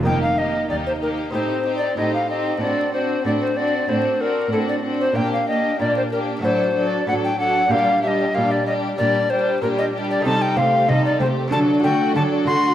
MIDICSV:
0, 0, Header, 1, 7, 480
1, 0, Start_track
1, 0, Key_signature, -2, "minor"
1, 0, Tempo, 636267
1, 45, Time_signature, 4, 2, 24, 8
1, 9613, End_track
2, 0, Start_track
2, 0, Title_t, "Recorder"
2, 0, Program_c, 0, 74
2, 45, Note_on_c, 0, 79, 70
2, 156, Note_off_c, 0, 79, 0
2, 169, Note_on_c, 0, 77, 55
2, 287, Note_on_c, 0, 75, 56
2, 298, Note_off_c, 0, 77, 0
2, 520, Note_off_c, 0, 75, 0
2, 525, Note_on_c, 0, 74, 62
2, 570, Note_off_c, 0, 74, 0
2, 652, Note_on_c, 0, 72, 53
2, 697, Note_off_c, 0, 72, 0
2, 770, Note_on_c, 0, 70, 56
2, 824, Note_off_c, 0, 70, 0
2, 1009, Note_on_c, 0, 72, 59
2, 1323, Note_off_c, 0, 72, 0
2, 1333, Note_on_c, 0, 74, 60
2, 1487, Note_off_c, 0, 74, 0
2, 1491, Note_on_c, 0, 75, 62
2, 1608, Note_off_c, 0, 75, 0
2, 1615, Note_on_c, 0, 77, 56
2, 1730, Note_off_c, 0, 77, 0
2, 1735, Note_on_c, 0, 75, 57
2, 1968, Note_off_c, 0, 75, 0
2, 1975, Note_on_c, 0, 74, 67
2, 2209, Note_off_c, 0, 74, 0
2, 2214, Note_on_c, 0, 72, 57
2, 2448, Note_off_c, 0, 72, 0
2, 2453, Note_on_c, 0, 74, 63
2, 2498, Note_off_c, 0, 74, 0
2, 2577, Note_on_c, 0, 72, 58
2, 2691, Note_on_c, 0, 74, 59
2, 2702, Note_off_c, 0, 72, 0
2, 2934, Note_on_c, 0, 72, 60
2, 2945, Note_off_c, 0, 74, 0
2, 3174, Note_on_c, 0, 70, 59
2, 3185, Note_off_c, 0, 72, 0
2, 3410, Note_off_c, 0, 70, 0
2, 3415, Note_on_c, 0, 69, 61
2, 3460, Note_off_c, 0, 69, 0
2, 3535, Note_on_c, 0, 74, 54
2, 3589, Note_off_c, 0, 74, 0
2, 3777, Note_on_c, 0, 72, 65
2, 3892, Note_on_c, 0, 79, 80
2, 3903, Note_off_c, 0, 72, 0
2, 4013, Note_off_c, 0, 79, 0
2, 4020, Note_on_c, 0, 77, 60
2, 4130, Note_off_c, 0, 77, 0
2, 4135, Note_on_c, 0, 75, 56
2, 4368, Note_off_c, 0, 75, 0
2, 4372, Note_on_c, 0, 74, 65
2, 4491, Note_off_c, 0, 74, 0
2, 4501, Note_on_c, 0, 72, 58
2, 4546, Note_off_c, 0, 72, 0
2, 4616, Note_on_c, 0, 70, 56
2, 4670, Note_off_c, 0, 70, 0
2, 4858, Note_on_c, 0, 72, 67
2, 5183, Note_on_c, 0, 74, 64
2, 5195, Note_off_c, 0, 72, 0
2, 5335, Note_off_c, 0, 74, 0
2, 5340, Note_on_c, 0, 78, 73
2, 5385, Note_off_c, 0, 78, 0
2, 5464, Note_on_c, 0, 79, 61
2, 5575, Note_off_c, 0, 79, 0
2, 5579, Note_on_c, 0, 78, 68
2, 5816, Note_on_c, 0, 77, 77
2, 5828, Note_off_c, 0, 78, 0
2, 6051, Note_off_c, 0, 77, 0
2, 6055, Note_on_c, 0, 76, 61
2, 6091, Note_on_c, 0, 75, 66
2, 6098, Note_off_c, 0, 76, 0
2, 6296, Note_on_c, 0, 77, 75
2, 6307, Note_off_c, 0, 75, 0
2, 6421, Note_on_c, 0, 74, 66
2, 6433, Note_off_c, 0, 77, 0
2, 6532, Note_off_c, 0, 74, 0
2, 6537, Note_on_c, 0, 75, 72
2, 6590, Note_off_c, 0, 75, 0
2, 6774, Note_on_c, 0, 74, 74
2, 7016, Note_on_c, 0, 72, 68
2, 7027, Note_off_c, 0, 74, 0
2, 7253, Note_off_c, 0, 72, 0
2, 7258, Note_on_c, 0, 70, 70
2, 7303, Note_off_c, 0, 70, 0
2, 7377, Note_on_c, 0, 75, 63
2, 7431, Note_off_c, 0, 75, 0
2, 7622, Note_on_c, 0, 74, 63
2, 7732, Note_off_c, 0, 74, 0
2, 7736, Note_on_c, 0, 81, 94
2, 7858, Note_on_c, 0, 79, 80
2, 7869, Note_off_c, 0, 81, 0
2, 7974, Note_on_c, 0, 77, 71
2, 7986, Note_off_c, 0, 79, 0
2, 8214, Note_on_c, 0, 75, 80
2, 8226, Note_off_c, 0, 77, 0
2, 8332, Note_off_c, 0, 75, 0
2, 8338, Note_on_c, 0, 74, 67
2, 8446, Note_off_c, 0, 74, 0
2, 8451, Note_on_c, 0, 72, 67
2, 8505, Note_off_c, 0, 72, 0
2, 8692, Note_on_c, 0, 81, 85
2, 8745, Note_off_c, 0, 81, 0
2, 8929, Note_on_c, 0, 79, 80
2, 9163, Note_off_c, 0, 79, 0
2, 9169, Note_on_c, 0, 81, 75
2, 9223, Note_off_c, 0, 81, 0
2, 9408, Note_on_c, 0, 84, 84
2, 9613, Note_off_c, 0, 84, 0
2, 9613, End_track
3, 0, Start_track
3, 0, Title_t, "Violin section"
3, 0, Program_c, 1, 48
3, 41, Note_on_c, 1, 67, 45
3, 277, Note_off_c, 1, 67, 0
3, 286, Note_on_c, 1, 67, 39
3, 518, Note_off_c, 1, 67, 0
3, 527, Note_on_c, 1, 67, 37
3, 756, Note_off_c, 1, 67, 0
3, 765, Note_on_c, 1, 67, 43
3, 999, Note_off_c, 1, 67, 0
3, 1008, Note_on_c, 1, 67, 41
3, 1241, Note_off_c, 1, 67, 0
3, 1250, Note_on_c, 1, 67, 42
3, 1481, Note_off_c, 1, 67, 0
3, 1490, Note_on_c, 1, 67, 43
3, 1717, Note_off_c, 1, 67, 0
3, 1726, Note_on_c, 1, 67, 44
3, 1964, Note_off_c, 1, 67, 0
3, 1969, Note_on_c, 1, 66, 45
3, 2200, Note_off_c, 1, 66, 0
3, 2209, Note_on_c, 1, 66, 40
3, 2441, Note_off_c, 1, 66, 0
3, 2450, Note_on_c, 1, 66, 42
3, 2687, Note_off_c, 1, 66, 0
3, 2695, Note_on_c, 1, 66, 43
3, 2919, Note_off_c, 1, 66, 0
3, 2928, Note_on_c, 1, 66, 45
3, 3163, Note_off_c, 1, 66, 0
3, 3172, Note_on_c, 1, 66, 43
3, 3397, Note_off_c, 1, 66, 0
3, 3406, Note_on_c, 1, 66, 44
3, 3641, Note_off_c, 1, 66, 0
3, 3650, Note_on_c, 1, 66, 41
3, 3887, Note_off_c, 1, 66, 0
3, 3891, Note_on_c, 1, 67, 46
3, 4128, Note_off_c, 1, 67, 0
3, 4136, Note_on_c, 1, 67, 42
3, 4366, Note_off_c, 1, 67, 0
3, 4375, Note_on_c, 1, 67, 41
3, 4610, Note_off_c, 1, 67, 0
3, 4618, Note_on_c, 1, 67, 42
3, 4852, Note_off_c, 1, 67, 0
3, 4859, Note_on_c, 1, 69, 45
3, 5089, Note_off_c, 1, 69, 0
3, 5098, Note_on_c, 1, 69, 47
3, 5332, Note_off_c, 1, 69, 0
3, 5340, Note_on_c, 1, 69, 49
3, 5573, Note_off_c, 1, 69, 0
3, 5580, Note_on_c, 1, 69, 46
3, 5812, Note_off_c, 1, 69, 0
3, 5818, Note_on_c, 1, 67, 47
3, 6048, Note_off_c, 1, 67, 0
3, 6057, Note_on_c, 1, 67, 47
3, 6287, Note_off_c, 1, 67, 0
3, 6296, Note_on_c, 1, 67, 43
3, 6527, Note_off_c, 1, 67, 0
3, 6536, Note_on_c, 1, 67, 51
3, 6771, Note_off_c, 1, 67, 0
3, 6779, Note_on_c, 1, 67, 46
3, 7013, Note_off_c, 1, 67, 0
3, 7023, Note_on_c, 1, 67, 46
3, 7252, Note_off_c, 1, 67, 0
3, 7261, Note_on_c, 1, 67, 51
3, 7488, Note_off_c, 1, 67, 0
3, 7497, Note_on_c, 1, 67, 50
3, 7730, Note_off_c, 1, 67, 0
3, 7741, Note_on_c, 1, 69, 47
3, 7959, Note_off_c, 1, 69, 0
3, 7977, Note_on_c, 1, 67, 48
3, 8213, Note_off_c, 1, 67, 0
3, 8220, Note_on_c, 1, 69, 47
3, 8455, Note_off_c, 1, 69, 0
3, 8460, Note_on_c, 1, 67, 51
3, 8694, Note_off_c, 1, 67, 0
3, 8697, Note_on_c, 1, 69, 52
3, 8916, Note_off_c, 1, 69, 0
3, 8934, Note_on_c, 1, 66, 48
3, 9168, Note_on_c, 1, 69, 49
3, 9170, Note_off_c, 1, 66, 0
3, 9403, Note_on_c, 1, 66, 51
3, 9407, Note_off_c, 1, 69, 0
3, 9613, Note_off_c, 1, 66, 0
3, 9613, End_track
4, 0, Start_track
4, 0, Title_t, "Violin section"
4, 0, Program_c, 2, 48
4, 42, Note_on_c, 2, 63, 42
4, 276, Note_off_c, 2, 63, 0
4, 285, Note_on_c, 2, 63, 37
4, 512, Note_off_c, 2, 63, 0
4, 521, Note_on_c, 2, 63, 43
4, 752, Note_off_c, 2, 63, 0
4, 761, Note_on_c, 2, 63, 40
4, 996, Note_off_c, 2, 63, 0
4, 1005, Note_on_c, 2, 63, 45
4, 1240, Note_off_c, 2, 63, 0
4, 1249, Note_on_c, 2, 63, 38
4, 1482, Note_off_c, 2, 63, 0
4, 1491, Note_on_c, 2, 63, 42
4, 1721, Note_off_c, 2, 63, 0
4, 1730, Note_on_c, 2, 63, 40
4, 1966, Note_off_c, 2, 63, 0
4, 1967, Note_on_c, 2, 62, 43
4, 2205, Note_off_c, 2, 62, 0
4, 2219, Note_on_c, 2, 62, 40
4, 2442, Note_off_c, 2, 62, 0
4, 2451, Note_on_c, 2, 62, 44
4, 2685, Note_off_c, 2, 62, 0
4, 2694, Note_on_c, 2, 62, 42
4, 2929, Note_off_c, 2, 62, 0
4, 2937, Note_on_c, 2, 62, 44
4, 3159, Note_off_c, 2, 62, 0
4, 3168, Note_on_c, 2, 62, 40
4, 3399, Note_off_c, 2, 62, 0
4, 3408, Note_on_c, 2, 62, 45
4, 3642, Note_off_c, 2, 62, 0
4, 3651, Note_on_c, 2, 62, 42
4, 3884, Note_off_c, 2, 62, 0
4, 3893, Note_on_c, 2, 62, 43
4, 4123, Note_off_c, 2, 62, 0
4, 4132, Note_on_c, 2, 62, 41
4, 4369, Note_off_c, 2, 62, 0
4, 4376, Note_on_c, 2, 62, 46
4, 4602, Note_off_c, 2, 62, 0
4, 4611, Note_on_c, 2, 62, 45
4, 4848, Note_off_c, 2, 62, 0
4, 4857, Note_on_c, 2, 62, 49
4, 5086, Note_off_c, 2, 62, 0
4, 5095, Note_on_c, 2, 62, 42
4, 5324, Note_off_c, 2, 62, 0
4, 5333, Note_on_c, 2, 62, 44
4, 5564, Note_off_c, 2, 62, 0
4, 5573, Note_on_c, 2, 62, 43
4, 5805, Note_off_c, 2, 62, 0
4, 5814, Note_on_c, 2, 62, 51
4, 6049, Note_off_c, 2, 62, 0
4, 6059, Note_on_c, 2, 62, 43
4, 6288, Note_off_c, 2, 62, 0
4, 6297, Note_on_c, 2, 62, 49
4, 6525, Note_off_c, 2, 62, 0
4, 6534, Note_on_c, 2, 62, 47
4, 6770, Note_off_c, 2, 62, 0
4, 6784, Note_on_c, 2, 62, 51
4, 7015, Note_off_c, 2, 62, 0
4, 7027, Note_on_c, 2, 62, 44
4, 7254, Note_off_c, 2, 62, 0
4, 7263, Note_on_c, 2, 62, 52
4, 7492, Note_off_c, 2, 62, 0
4, 7501, Note_on_c, 2, 62, 51
4, 7732, Note_off_c, 2, 62, 0
4, 7740, Note_on_c, 2, 63, 50
4, 7959, Note_off_c, 2, 63, 0
4, 7979, Note_on_c, 2, 60, 47
4, 8214, Note_off_c, 2, 60, 0
4, 8216, Note_on_c, 2, 63, 50
4, 8452, Note_off_c, 2, 63, 0
4, 8454, Note_on_c, 2, 60, 49
4, 8688, Note_on_c, 2, 62, 54
4, 8691, Note_off_c, 2, 60, 0
4, 8911, Note_off_c, 2, 62, 0
4, 8925, Note_on_c, 2, 66, 47
4, 9164, Note_on_c, 2, 62, 52
4, 9166, Note_off_c, 2, 66, 0
4, 9403, Note_on_c, 2, 66, 50
4, 9405, Note_off_c, 2, 62, 0
4, 9613, Note_off_c, 2, 66, 0
4, 9613, End_track
5, 0, Start_track
5, 0, Title_t, "Viola section"
5, 0, Program_c, 3, 48
5, 44, Note_on_c, 3, 58, 44
5, 280, Note_off_c, 3, 58, 0
5, 290, Note_on_c, 3, 58, 41
5, 519, Note_off_c, 3, 58, 0
5, 528, Note_on_c, 3, 58, 40
5, 759, Note_off_c, 3, 58, 0
5, 768, Note_on_c, 3, 58, 40
5, 1004, Note_off_c, 3, 58, 0
5, 1008, Note_on_c, 3, 60, 46
5, 1241, Note_off_c, 3, 60, 0
5, 1250, Note_on_c, 3, 60, 46
5, 1479, Note_off_c, 3, 60, 0
5, 1488, Note_on_c, 3, 60, 45
5, 1717, Note_off_c, 3, 60, 0
5, 1726, Note_on_c, 3, 60, 42
5, 1956, Note_off_c, 3, 60, 0
5, 1965, Note_on_c, 3, 60, 48
5, 2197, Note_off_c, 3, 60, 0
5, 2206, Note_on_c, 3, 60, 43
5, 2441, Note_off_c, 3, 60, 0
5, 2450, Note_on_c, 3, 60, 43
5, 2677, Note_off_c, 3, 60, 0
5, 2686, Note_on_c, 3, 60, 39
5, 2922, Note_off_c, 3, 60, 0
5, 2931, Note_on_c, 3, 60, 49
5, 3163, Note_off_c, 3, 60, 0
5, 3172, Note_on_c, 3, 60, 44
5, 3402, Note_off_c, 3, 60, 0
5, 3411, Note_on_c, 3, 60, 45
5, 3640, Note_off_c, 3, 60, 0
5, 3649, Note_on_c, 3, 60, 42
5, 3887, Note_off_c, 3, 60, 0
5, 3892, Note_on_c, 3, 58, 47
5, 4124, Note_off_c, 3, 58, 0
5, 4133, Note_on_c, 3, 58, 42
5, 4362, Note_off_c, 3, 58, 0
5, 4371, Note_on_c, 3, 58, 43
5, 4604, Note_off_c, 3, 58, 0
5, 4613, Note_on_c, 3, 58, 44
5, 4849, Note_off_c, 3, 58, 0
5, 4853, Note_on_c, 3, 54, 49
5, 5086, Note_off_c, 3, 54, 0
5, 5095, Note_on_c, 3, 54, 49
5, 5324, Note_off_c, 3, 54, 0
5, 5333, Note_on_c, 3, 54, 50
5, 5565, Note_off_c, 3, 54, 0
5, 5574, Note_on_c, 3, 54, 45
5, 5809, Note_off_c, 3, 54, 0
5, 5813, Note_on_c, 3, 55, 53
5, 6046, Note_off_c, 3, 55, 0
5, 6055, Note_on_c, 3, 55, 45
5, 6283, Note_off_c, 3, 55, 0
5, 6292, Note_on_c, 3, 55, 45
5, 6528, Note_off_c, 3, 55, 0
5, 6537, Note_on_c, 3, 55, 44
5, 6771, Note_off_c, 3, 55, 0
5, 6780, Note_on_c, 3, 55, 53
5, 7010, Note_off_c, 3, 55, 0
5, 7019, Note_on_c, 3, 55, 49
5, 7250, Note_off_c, 3, 55, 0
5, 7259, Note_on_c, 3, 55, 52
5, 7490, Note_off_c, 3, 55, 0
5, 7499, Note_on_c, 3, 55, 49
5, 7727, Note_off_c, 3, 55, 0
5, 7736, Note_on_c, 3, 55, 50
5, 7957, Note_off_c, 3, 55, 0
5, 7980, Note_on_c, 3, 57, 45
5, 8215, Note_off_c, 3, 57, 0
5, 8219, Note_on_c, 3, 55, 49
5, 8454, Note_off_c, 3, 55, 0
5, 8455, Note_on_c, 3, 57, 50
5, 8692, Note_off_c, 3, 57, 0
5, 8692, Note_on_c, 3, 54, 52
5, 8913, Note_off_c, 3, 54, 0
5, 8936, Note_on_c, 3, 57, 53
5, 9171, Note_off_c, 3, 57, 0
5, 9175, Note_on_c, 3, 54, 56
5, 9410, Note_off_c, 3, 54, 0
5, 9413, Note_on_c, 3, 57, 49
5, 9613, Note_off_c, 3, 57, 0
5, 9613, End_track
6, 0, Start_track
6, 0, Title_t, "Lute"
6, 0, Program_c, 4, 24
6, 24, Note_on_c, 4, 58, 36
6, 36, Note_on_c, 4, 63, 35
6, 47, Note_on_c, 4, 39, 39
6, 449, Note_off_c, 4, 39, 0
6, 528, Note_on_c, 4, 39, 41
6, 931, Note_off_c, 4, 39, 0
6, 969, Note_off_c, 4, 58, 0
6, 975, Note_off_c, 4, 63, 0
6, 985, Note_on_c, 4, 60, 37
6, 996, Note_on_c, 4, 63, 35
6, 1007, Note_on_c, 4, 45, 39
6, 1411, Note_off_c, 4, 45, 0
6, 1487, Note_on_c, 4, 45, 40
6, 1891, Note_off_c, 4, 45, 0
6, 1930, Note_off_c, 4, 60, 0
6, 1936, Note_off_c, 4, 63, 0
6, 1945, Note_on_c, 4, 60, 36
6, 1957, Note_on_c, 4, 62, 33
6, 1969, Note_on_c, 4, 45, 40
6, 2373, Note_off_c, 4, 45, 0
6, 2450, Note_on_c, 4, 45, 42
6, 2854, Note_off_c, 4, 45, 0
6, 2929, Note_on_c, 4, 45, 38
6, 3334, Note_off_c, 4, 45, 0
6, 3414, Note_on_c, 4, 45, 41
6, 3816, Note_off_c, 4, 45, 0
6, 3851, Note_off_c, 4, 60, 0
6, 3857, Note_off_c, 4, 62, 0
6, 3872, Note_on_c, 4, 58, 36
6, 3883, Note_on_c, 4, 62, 34
6, 3895, Note_on_c, 4, 46, 42
6, 4297, Note_off_c, 4, 46, 0
6, 4372, Note_on_c, 4, 46, 41
6, 4775, Note_off_c, 4, 46, 0
6, 4815, Note_off_c, 4, 58, 0
6, 4820, Note_off_c, 4, 62, 0
6, 4820, Note_on_c, 4, 57, 38
6, 4834, Note_on_c, 4, 62, 37
6, 4840, Note_off_c, 4, 62, 0
6, 4843, Note_on_c, 4, 66, 40
6, 4856, Note_on_c, 4, 45, 44
6, 5258, Note_off_c, 4, 45, 0
6, 5335, Note_on_c, 4, 45, 46
6, 5735, Note_off_c, 4, 45, 0
6, 5767, Note_off_c, 4, 57, 0
6, 5779, Note_off_c, 4, 66, 0
6, 5791, Note_on_c, 4, 62, 38
6, 5803, Note_on_c, 4, 67, 37
6, 5813, Note_on_c, 4, 46, 43
6, 6215, Note_off_c, 4, 46, 0
6, 6295, Note_on_c, 4, 46, 45
6, 6697, Note_off_c, 4, 46, 0
6, 6775, Note_on_c, 4, 46, 43
6, 7178, Note_off_c, 4, 46, 0
6, 7255, Note_on_c, 4, 46, 49
6, 7655, Note_off_c, 4, 46, 0
6, 7692, Note_off_c, 4, 62, 0
6, 7698, Note_off_c, 4, 67, 0
6, 7700, Note_on_c, 4, 57, 43
6, 7711, Note_on_c, 4, 63, 43
6, 7722, Note_on_c, 4, 67, 43
6, 7733, Note_on_c, 4, 48, 49
6, 7948, Note_off_c, 4, 48, 0
6, 7972, Note_on_c, 4, 48, 50
6, 8187, Note_off_c, 4, 48, 0
6, 8213, Note_on_c, 4, 48, 49
6, 8427, Note_off_c, 4, 48, 0
6, 8453, Note_on_c, 4, 48, 47
6, 8643, Note_off_c, 4, 57, 0
6, 8649, Note_off_c, 4, 63, 0
6, 8655, Note_off_c, 4, 67, 0
6, 8659, Note_on_c, 4, 57, 44
6, 8667, Note_off_c, 4, 48, 0
6, 8668, Note_on_c, 4, 62, 44
6, 8680, Note_on_c, 4, 66, 44
6, 8693, Note_on_c, 4, 50, 49
6, 8907, Note_off_c, 4, 50, 0
6, 8932, Note_on_c, 4, 50, 46
6, 9146, Note_off_c, 4, 50, 0
6, 9171, Note_on_c, 4, 50, 52
6, 9385, Note_off_c, 4, 50, 0
6, 9408, Note_on_c, 4, 50, 48
6, 9601, Note_off_c, 4, 57, 0
6, 9606, Note_off_c, 4, 62, 0
6, 9612, Note_off_c, 4, 66, 0
6, 9613, Note_off_c, 4, 50, 0
6, 9613, End_track
7, 0, Start_track
7, 0, Title_t, "Cello section"
7, 0, Program_c, 5, 48
7, 44, Note_on_c, 5, 39, 55
7, 447, Note_off_c, 5, 39, 0
7, 526, Note_on_c, 5, 39, 53
7, 930, Note_off_c, 5, 39, 0
7, 1006, Note_on_c, 5, 45, 52
7, 1410, Note_off_c, 5, 45, 0
7, 1487, Note_on_c, 5, 45, 50
7, 1891, Note_off_c, 5, 45, 0
7, 1971, Note_on_c, 5, 45, 53
7, 2374, Note_off_c, 5, 45, 0
7, 2448, Note_on_c, 5, 45, 53
7, 2853, Note_off_c, 5, 45, 0
7, 2930, Note_on_c, 5, 45, 54
7, 3334, Note_off_c, 5, 45, 0
7, 3412, Note_on_c, 5, 45, 58
7, 3815, Note_off_c, 5, 45, 0
7, 3892, Note_on_c, 5, 46, 61
7, 4295, Note_off_c, 5, 46, 0
7, 4372, Note_on_c, 5, 46, 52
7, 4775, Note_off_c, 5, 46, 0
7, 4852, Note_on_c, 5, 45, 58
7, 5256, Note_off_c, 5, 45, 0
7, 5334, Note_on_c, 5, 45, 56
7, 5735, Note_off_c, 5, 45, 0
7, 5813, Note_on_c, 5, 46, 61
7, 6215, Note_off_c, 5, 46, 0
7, 6295, Note_on_c, 5, 46, 57
7, 6697, Note_off_c, 5, 46, 0
7, 6777, Note_on_c, 5, 46, 62
7, 7179, Note_off_c, 5, 46, 0
7, 7255, Note_on_c, 5, 46, 61
7, 7656, Note_off_c, 5, 46, 0
7, 7735, Note_on_c, 5, 48, 63
7, 7795, Note_off_c, 5, 48, 0
7, 7972, Note_on_c, 5, 48, 53
7, 8032, Note_off_c, 5, 48, 0
7, 8211, Note_on_c, 5, 48, 54
7, 8272, Note_off_c, 5, 48, 0
7, 8451, Note_on_c, 5, 48, 56
7, 8512, Note_off_c, 5, 48, 0
7, 8689, Note_on_c, 5, 50, 63
7, 8750, Note_off_c, 5, 50, 0
7, 8928, Note_on_c, 5, 50, 51
7, 8989, Note_off_c, 5, 50, 0
7, 9166, Note_on_c, 5, 50, 58
7, 9226, Note_off_c, 5, 50, 0
7, 9406, Note_on_c, 5, 50, 53
7, 9466, Note_off_c, 5, 50, 0
7, 9613, End_track
0, 0, End_of_file